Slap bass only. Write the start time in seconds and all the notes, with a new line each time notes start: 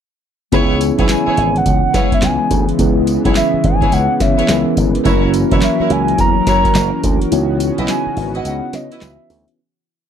0.52 C#2
0.99 B1
1.27 muted slap bass stroke
1.37 G#1
1.66 C#2
1.94 C#3
2.22 C#2
2.51 D2
2.79 C#2
3.25 B1
3.54 muted slap bass stroke
3.64 G#1
3.92 C#2
4.20 C#3
4.49 C#2
4.77 G1
5.05 F#1
5.52 E1
5.80 muted slap bass stroke
5.90 C#2
6.18 E2
6.47 F#2
6.75 F#1
7.03 D2
7.32 C#2
7.78 B1
8.06 muted slap bass stroke
8.17 G#1
8.45 C#2
8.73 C#3
9.02 C#2
9.30 D2